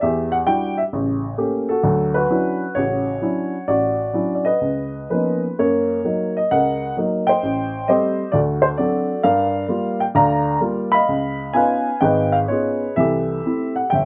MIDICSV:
0, 0, Header, 1, 2, 480
1, 0, Start_track
1, 0, Tempo, 456969
1, 30, Time_signature, 4, 2, 24, 8
1, 4350, Tempo, 483092
1, 5790, Tempo, 461538
1, 7230, Tempo, 455927
1, 11070, Tempo, 472813
1, 14550, End_track
2, 0, Start_track
2, 0, Title_t, "Upright piano"
2, 0, Program_c, 0, 0
2, 11, Note_on_c, 0, 76, 70
2, 24, Note_on_c, 0, 40, 61
2, 35, Note_on_c, 0, 67, 51
2, 334, Note_on_c, 0, 78, 83
2, 352, Note_off_c, 0, 76, 0
2, 387, Note_off_c, 0, 78, 0
2, 442, Note_off_c, 0, 40, 0
2, 490, Note_on_c, 0, 79, 92
2, 491, Note_on_c, 0, 55, 44
2, 495, Note_on_c, 0, 62, 43
2, 496, Note_on_c, 0, 64, 44
2, 499, Note_on_c, 0, 66, 53
2, 794, Note_off_c, 0, 79, 0
2, 815, Note_on_c, 0, 76, 66
2, 833, Note_off_c, 0, 55, 0
2, 835, Note_off_c, 0, 62, 0
2, 835, Note_off_c, 0, 64, 0
2, 837, Note_off_c, 0, 66, 0
2, 867, Note_off_c, 0, 76, 0
2, 943, Note_off_c, 0, 67, 0
2, 974, Note_on_c, 0, 49, 63
2, 979, Note_on_c, 0, 33, 68
2, 1391, Note_off_c, 0, 49, 0
2, 1394, Note_off_c, 0, 33, 0
2, 1445, Note_on_c, 0, 57, 53
2, 1449, Note_on_c, 0, 58, 44
2, 1449, Note_on_c, 0, 61, 45
2, 1452, Note_on_c, 0, 67, 58
2, 1773, Note_on_c, 0, 69, 77
2, 1788, Note_off_c, 0, 57, 0
2, 1790, Note_off_c, 0, 58, 0
2, 1790, Note_off_c, 0, 61, 0
2, 1792, Note_off_c, 0, 67, 0
2, 1794, Note_on_c, 0, 66, 54
2, 1926, Note_on_c, 0, 54, 66
2, 1927, Note_on_c, 0, 38, 69
2, 2251, Note_on_c, 0, 71, 80
2, 2259, Note_off_c, 0, 66, 0
2, 2272, Note_off_c, 0, 69, 0
2, 2275, Note_on_c, 0, 66, 55
2, 2349, Note_off_c, 0, 54, 0
2, 2350, Note_off_c, 0, 38, 0
2, 2417, Note_on_c, 0, 54, 49
2, 2419, Note_on_c, 0, 62, 45
2, 2420, Note_on_c, 0, 61, 48
2, 2424, Note_on_c, 0, 64, 58
2, 2755, Note_off_c, 0, 54, 0
2, 2756, Note_off_c, 0, 61, 0
2, 2756, Note_off_c, 0, 62, 0
2, 2758, Note_off_c, 0, 64, 0
2, 2888, Note_on_c, 0, 73, 75
2, 2897, Note_off_c, 0, 66, 0
2, 2902, Note_on_c, 0, 33, 69
2, 2910, Note_on_c, 0, 49, 62
2, 2913, Note_off_c, 0, 71, 0
2, 2913, Note_on_c, 0, 66, 53
2, 3319, Note_off_c, 0, 33, 0
2, 3323, Note_off_c, 0, 49, 0
2, 3375, Note_on_c, 0, 54, 47
2, 3378, Note_on_c, 0, 61, 43
2, 3381, Note_on_c, 0, 62, 43
2, 3385, Note_on_c, 0, 64, 52
2, 3717, Note_off_c, 0, 54, 0
2, 3719, Note_off_c, 0, 61, 0
2, 3720, Note_off_c, 0, 62, 0
2, 3722, Note_off_c, 0, 64, 0
2, 3828, Note_off_c, 0, 66, 0
2, 3864, Note_on_c, 0, 74, 81
2, 3865, Note_on_c, 0, 33, 60
2, 3876, Note_on_c, 0, 66, 57
2, 3887, Note_off_c, 0, 73, 0
2, 4286, Note_off_c, 0, 33, 0
2, 4344, Note_on_c, 0, 54, 47
2, 4344, Note_on_c, 0, 61, 41
2, 4347, Note_on_c, 0, 62, 39
2, 4353, Note_on_c, 0, 64, 46
2, 4542, Note_off_c, 0, 74, 0
2, 4557, Note_on_c, 0, 74, 57
2, 4655, Note_on_c, 0, 75, 83
2, 4658, Note_off_c, 0, 74, 0
2, 4665, Note_on_c, 0, 71, 49
2, 4676, Note_off_c, 0, 54, 0
2, 4676, Note_off_c, 0, 61, 0
2, 4678, Note_off_c, 0, 62, 0
2, 4681, Note_off_c, 0, 64, 0
2, 4787, Note_off_c, 0, 66, 0
2, 4818, Note_on_c, 0, 37, 54
2, 5245, Note_off_c, 0, 37, 0
2, 5292, Note_off_c, 0, 71, 0
2, 5302, Note_on_c, 0, 53, 41
2, 5305, Note_on_c, 0, 58, 40
2, 5307, Note_on_c, 0, 71, 59
2, 5312, Note_on_c, 0, 59, 38
2, 5312, Note_on_c, 0, 61, 40
2, 5318, Note_on_c, 0, 63, 46
2, 5326, Note_on_c, 0, 65, 43
2, 5593, Note_off_c, 0, 75, 0
2, 5647, Note_off_c, 0, 53, 0
2, 5649, Note_off_c, 0, 58, 0
2, 5652, Note_off_c, 0, 61, 0
2, 5653, Note_off_c, 0, 59, 0
2, 5655, Note_off_c, 0, 63, 0
2, 5752, Note_off_c, 0, 71, 0
2, 5763, Note_off_c, 0, 65, 0
2, 5785, Note_on_c, 0, 42, 63
2, 5788, Note_on_c, 0, 58, 61
2, 5792, Note_on_c, 0, 73, 69
2, 5814, Note_on_c, 0, 70, 54
2, 6202, Note_off_c, 0, 42, 0
2, 6203, Note_off_c, 0, 58, 0
2, 6260, Note_on_c, 0, 54, 49
2, 6264, Note_on_c, 0, 58, 44
2, 6270, Note_on_c, 0, 63, 50
2, 6551, Note_off_c, 0, 73, 0
2, 6598, Note_on_c, 0, 75, 75
2, 6603, Note_off_c, 0, 54, 0
2, 6605, Note_off_c, 0, 58, 0
2, 6608, Note_off_c, 0, 63, 0
2, 6721, Note_off_c, 0, 70, 0
2, 6748, Note_on_c, 0, 37, 64
2, 6749, Note_off_c, 0, 75, 0
2, 6749, Note_on_c, 0, 78, 81
2, 6763, Note_on_c, 0, 70, 57
2, 6765, Note_on_c, 0, 75, 62
2, 7165, Note_off_c, 0, 37, 0
2, 7194, Note_off_c, 0, 78, 0
2, 7223, Note_on_c, 0, 54, 50
2, 7232, Note_on_c, 0, 58, 43
2, 7240, Note_on_c, 0, 63, 54
2, 7538, Note_on_c, 0, 79, 92
2, 7542, Note_off_c, 0, 75, 0
2, 7558, Note_on_c, 0, 75, 57
2, 7563, Note_off_c, 0, 54, 0
2, 7564, Note_on_c, 0, 72, 56
2, 7568, Note_off_c, 0, 58, 0
2, 7572, Note_off_c, 0, 63, 0
2, 7673, Note_off_c, 0, 70, 0
2, 7710, Note_on_c, 0, 33, 63
2, 8126, Note_off_c, 0, 33, 0
2, 8167, Note_off_c, 0, 75, 0
2, 8183, Note_off_c, 0, 72, 0
2, 8183, Note_on_c, 0, 75, 80
2, 8189, Note_on_c, 0, 55, 50
2, 8193, Note_on_c, 0, 57, 45
2, 8197, Note_on_c, 0, 60, 57
2, 8198, Note_on_c, 0, 72, 51
2, 8201, Note_off_c, 0, 79, 0
2, 8203, Note_on_c, 0, 67, 55
2, 8525, Note_off_c, 0, 55, 0
2, 8526, Note_off_c, 0, 57, 0
2, 8528, Note_off_c, 0, 60, 0
2, 8628, Note_off_c, 0, 75, 0
2, 8636, Note_off_c, 0, 72, 0
2, 8639, Note_off_c, 0, 67, 0
2, 8643, Note_on_c, 0, 74, 77
2, 8662, Note_on_c, 0, 38, 66
2, 8663, Note_on_c, 0, 69, 57
2, 8669, Note_on_c, 0, 66, 55
2, 8717, Note_off_c, 0, 74, 0
2, 8960, Note_on_c, 0, 72, 69
2, 9013, Note_off_c, 0, 72, 0
2, 9074, Note_off_c, 0, 38, 0
2, 9126, Note_on_c, 0, 74, 78
2, 9128, Note_off_c, 0, 66, 0
2, 9131, Note_off_c, 0, 69, 0
2, 9134, Note_on_c, 0, 54, 49
2, 9138, Note_on_c, 0, 60, 50
2, 9139, Note_on_c, 0, 62, 58
2, 9144, Note_on_c, 0, 66, 57
2, 9147, Note_on_c, 0, 69, 57
2, 9473, Note_off_c, 0, 54, 0
2, 9475, Note_off_c, 0, 60, 0
2, 9476, Note_off_c, 0, 62, 0
2, 9588, Note_off_c, 0, 66, 0
2, 9590, Note_off_c, 0, 69, 0
2, 9601, Note_off_c, 0, 74, 0
2, 9609, Note_on_c, 0, 77, 79
2, 9615, Note_on_c, 0, 43, 67
2, 9615, Note_on_c, 0, 70, 62
2, 9617, Note_on_c, 0, 74, 62
2, 10038, Note_off_c, 0, 43, 0
2, 10084, Note_on_c, 0, 55, 50
2, 10084, Note_on_c, 0, 58, 45
2, 10090, Note_on_c, 0, 65, 59
2, 10419, Note_on_c, 0, 79, 79
2, 10433, Note_off_c, 0, 55, 0
2, 10433, Note_off_c, 0, 58, 0
2, 10436, Note_off_c, 0, 65, 0
2, 10446, Note_off_c, 0, 77, 0
2, 10472, Note_off_c, 0, 79, 0
2, 10540, Note_off_c, 0, 70, 0
2, 10541, Note_off_c, 0, 74, 0
2, 10571, Note_on_c, 0, 38, 72
2, 10571, Note_on_c, 0, 50, 66
2, 10579, Note_on_c, 0, 82, 92
2, 10584, Note_on_c, 0, 74, 66
2, 10585, Note_on_c, 0, 77, 63
2, 10997, Note_off_c, 0, 38, 0
2, 10997, Note_off_c, 0, 50, 0
2, 11032, Note_off_c, 0, 82, 0
2, 11052, Note_on_c, 0, 55, 53
2, 11056, Note_on_c, 0, 58, 45
2, 11064, Note_on_c, 0, 65, 58
2, 11368, Note_on_c, 0, 83, 98
2, 11376, Note_off_c, 0, 77, 0
2, 11391, Note_on_c, 0, 77, 65
2, 11392, Note_on_c, 0, 75, 72
2, 11398, Note_off_c, 0, 55, 0
2, 11399, Note_off_c, 0, 58, 0
2, 11404, Note_off_c, 0, 65, 0
2, 11507, Note_off_c, 0, 74, 0
2, 11540, Note_on_c, 0, 37, 62
2, 11959, Note_off_c, 0, 37, 0
2, 11996, Note_on_c, 0, 80, 80
2, 12004, Note_on_c, 0, 59, 50
2, 12005, Note_on_c, 0, 61, 46
2, 12006, Note_on_c, 0, 63, 44
2, 12008, Note_off_c, 0, 77, 0
2, 12009, Note_on_c, 0, 65, 58
2, 12022, Note_on_c, 0, 71, 58
2, 12023, Note_on_c, 0, 77, 64
2, 12035, Note_off_c, 0, 83, 0
2, 12306, Note_off_c, 0, 75, 0
2, 12350, Note_off_c, 0, 59, 0
2, 12350, Note_off_c, 0, 61, 0
2, 12351, Note_off_c, 0, 63, 0
2, 12352, Note_off_c, 0, 65, 0
2, 12453, Note_off_c, 0, 80, 0
2, 12475, Note_on_c, 0, 79, 83
2, 12483, Note_on_c, 0, 44, 68
2, 12486, Note_on_c, 0, 32, 68
2, 12490, Note_off_c, 0, 71, 0
2, 12505, Note_on_c, 0, 71, 63
2, 12508, Note_on_c, 0, 75, 61
2, 12782, Note_off_c, 0, 77, 0
2, 12797, Note_on_c, 0, 77, 72
2, 12819, Note_off_c, 0, 79, 0
2, 12848, Note_off_c, 0, 77, 0
2, 12908, Note_off_c, 0, 44, 0
2, 12909, Note_off_c, 0, 32, 0
2, 12957, Note_on_c, 0, 73, 71
2, 12967, Note_on_c, 0, 59, 45
2, 12967, Note_on_c, 0, 61, 42
2, 12970, Note_on_c, 0, 63, 41
2, 12970, Note_on_c, 0, 65, 53
2, 12995, Note_on_c, 0, 68, 51
2, 13313, Note_off_c, 0, 59, 0
2, 13313, Note_off_c, 0, 61, 0
2, 13315, Note_off_c, 0, 63, 0
2, 13315, Note_off_c, 0, 65, 0
2, 13417, Note_off_c, 0, 73, 0
2, 13424, Note_off_c, 0, 71, 0
2, 13426, Note_off_c, 0, 75, 0
2, 13437, Note_off_c, 0, 68, 0
2, 13444, Note_on_c, 0, 76, 81
2, 13450, Note_on_c, 0, 52, 57
2, 13453, Note_on_c, 0, 36, 57
2, 13481, Note_on_c, 0, 69, 55
2, 13483, Note_on_c, 0, 67, 56
2, 13877, Note_off_c, 0, 52, 0
2, 13879, Note_off_c, 0, 36, 0
2, 13947, Note_on_c, 0, 60, 45
2, 13948, Note_on_c, 0, 57, 47
2, 13951, Note_on_c, 0, 64, 50
2, 14222, Note_off_c, 0, 76, 0
2, 14252, Note_on_c, 0, 78, 68
2, 14287, Note_off_c, 0, 60, 0
2, 14288, Note_off_c, 0, 57, 0
2, 14289, Note_off_c, 0, 64, 0
2, 14398, Note_off_c, 0, 69, 0
2, 14398, Note_on_c, 0, 79, 79
2, 14399, Note_off_c, 0, 67, 0
2, 14408, Note_off_c, 0, 78, 0
2, 14424, Note_on_c, 0, 31, 63
2, 14443, Note_on_c, 0, 76, 61
2, 14550, Note_off_c, 0, 31, 0
2, 14550, Note_off_c, 0, 76, 0
2, 14550, Note_off_c, 0, 79, 0
2, 14550, End_track
0, 0, End_of_file